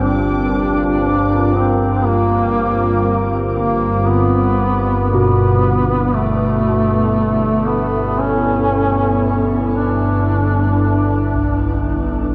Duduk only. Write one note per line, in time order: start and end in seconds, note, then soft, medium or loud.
0.01 1.54 D4 medium
1.54 2.07 C4 medium
2.05 3.34 A#3 medium
3.57 4.09 A#3 medium
4.08 5.09 B3 medium
5.10 6.17 B3 medium
6.15 7.69 A3 medium
7.67 8.20 B3 medium
8.19 9.48 C#4 medium
9.75 11.82 D4 medium